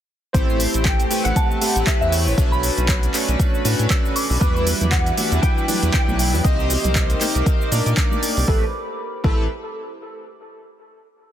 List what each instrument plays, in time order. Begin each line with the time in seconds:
0.33 analog synth bass A1, analog polysynth A3 C4 E4 G4 C5, tine electric piano C5, kick, closed hi-hat, shaker
0.50 shaker
0.60 open hi-hat, shaker
0.74 analog synth bass A1, closed hi-hat, shaker
0.84 tine electric piano G5, kick, clap, closed hi-hat, shaker
1.00 closed hi-hat, shaker
1.10 analog polysynth A3 C4 E4 G4 B4, open hi-hat, shaker
1.24 analog synth bass A1, tine electric piano F#5, closed hi-hat, shaker
1.36 synth bell A5, kick, closed hi-hat, shaker
1.51 shaker
1.61 analog polysynth A3 C4 E4 G4 B4, open hi-hat, shaker
1.76 analog synth bass A1, closed hi-hat, shaker
1.86 tine electric piano E5, kick, clap, closed hi-hat, shaker
2.01 analog synth bass E2, synth bell E5, shaker
2.11 tine electric piano C#5, synth bell E5, open hi-hat, shaker
2.27 analog synth bass A1, shaker
2.37 analog synth bass B1, analog polysynth A3 C#4 D4 F#4 B4, kick, closed hi-hat, shaker
2.52 synth bell B5, shaker
2.63 open hi-hat, shaker
2.78 analog synth bass B1, closed hi-hat, shaker
2.89 kick, clap, closed hi-hat, shaker
3.03 closed hi-hat, shaker
3.14 analog polysynth A3 C#4 D4 F#4 B4, clap, open hi-hat, shaker
3.28 analog synth bass B1, closed hi-hat, shaker
3.39 kick, closed hi-hat, shaker
3.55 shaker
3.64 analog synth bass A2, analog polysynth A3 C#4 D4 F#4 B4, open hi-hat, shaker
3.79 analog synth bass A2, closed hi-hat, shaker
3.90 synth bell E6, kick, clap, closed hi-hat, shaker
4.05 shaker
4.16 synth bell D6, open hi-hat, shaker
4.30 analog synth bass B1, open hi-hat, shaker
4.40 analog synth bass E2, ambient pad E3 E5 D6, analog polysynth G3 D4 E4 F#4 B4, tine electric piano B4, kick, closed hi-hat, high conga, shaker
4.56 shaker
4.67 open hi-hat, high bongo, shaker
4.81 analog synth bass E2, closed hi-hat, high conga, low conga, shaker
4.91 tine electric piano F#5, kick, clap, closed hi-hat, shaker
5.06 closed hi-hat, shaker
5.17 analog polysynth G3 D4 E4 F#4 B4, open hi-hat, high conga, shaker
5.32 analog synth bass E2, closed hi-hat, shaker
5.42 tine electric piano G5, kick, closed hi-hat, shaker
5.58 shaker
5.68 analog polysynth F#3 G3 D4 E4 B4, open hi-hat, high conga, shaker
5.83 analog synth bass E2, closed hi-hat, shaker
5.92 tine electric piano G5, kick, clap, closed hi-hat, shaker
6.08 analog synth bass B1, high conga, shaker
6.19 open hi-hat, shaker
6.33 analog synth bass E2, high bongo, shaker
6.43 analog synth bass C2, analog polysynth A#3 C4 D#4 G4 C5, ambient pad A#4 D6, tine electric piano D#5, kick, closed hi-hat, high conga, shaker
6.60 shaker
6.70 open hi-hat, high bongo, shaker
6.84 analog synth bass C2, closed hi-hat, high conga, low conga, shaker
6.95 kick, clap, closed hi-hat, shaker
7.10 closed hi-hat, shaker
7.21 analog polysynth A#3 C4 D#4 G4 C5, clap, open hi-hat, high conga, shaker
7.35 analog synth bass C2, closed hi-hat, shaker
7.46 kick, closed hi-hat, shaker
7.61 shaker
7.71 analog synth bass A#2, analog polysynth A#3 D4 D#4 G4 D5, open hi-hat, high conga, shaker
7.86 analog synth bass A#2, closed hi-hat, shaker
7.97 kick, clap, closed hi-hat, shaker
8.11 high conga, shaker
8.23 open hi-hat, shaker
8.37 analog synth bass C2, open hi-hat, high bongo, shaker
8.47 analog synth bass A1, analog polysynth A3 C4 E4 G4 B4, tine electric piano A4, kick
9.24 analog synth bass A1, analog polysynth A3 C4 E4 G4 B4, tine electric piano A4, kick